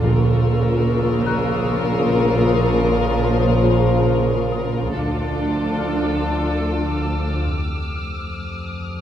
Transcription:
0.03 synth drone A#1, double bass section A#1, timpani A#2, cello section A#2, viola section C#3, french horn section C#3 F3, violin section F4 A#4 C#6 E6
0.85 violin section D#6
1.26 celesta A#5 F#6
4.52 celesta D#6
4.95 synth drone D2, cello section D2, double bass section D2, french horn section F3 D4, viola section D4, violin section F4 A4 D6
5.78 violin section E6, celesta F6
6.62 violin section F6
7.46 timpani F2, synth drone F2
8.61 violin section D#6

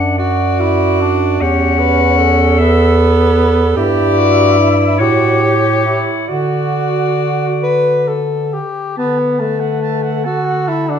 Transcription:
Already playing: bass clarinet F#2, tenor saxophone D4, clarinet F#5
0.18 tenor saxophone F#4, alto saxophone F#4, clarinet D5
0.59 tenor saxophone E4
1.01 tenor saxophone D4
1.40 bass clarinet E2, tenor saxophone C#4, alto saxophone G4, clarinet F#5
1.80 alto saxophone B4
2.18 alto saxophone A4
2.58 tenor saxophone B3, clarinet E5
3.76 bass clarinet G2, tenor saxophone E4, alto saxophone G4, clarinet D5
4.18 alto saxophone F#4
4.59 alto saxophone E4
4.98 bass clarinet A2, alto saxophone F#4, tenor saxophone G4, clarinet C#5
5.43 alto saxophone G4
5.86 alto saxophone E4
6.28 bass clarinet D3, tenor saxophone F#4, alto saxophone F#4, clarinet D5
7.63 tenor saxophone B4
8.07 tenor saxophone A4
8.53 tenor saxophone G4
8.97 bass clarinet D3, tenor saxophone B3, clarinet B4, alto saxophone A5
9.19 alto saxophone F#5
9.39 tenor saxophone A3, alto saxophone A5
9.60 alto saxophone F#5
9.82 alto saxophone A5
10.03 alto saxophone F#5
10.24 tenor saxophone F#4, clarinet A4, alto saxophone A5
10.45 alto saxophone F#5
10.66 tenor saxophone E4, alto saxophone A5
10.87 tenor saxophone D4, alto saxophone F#5

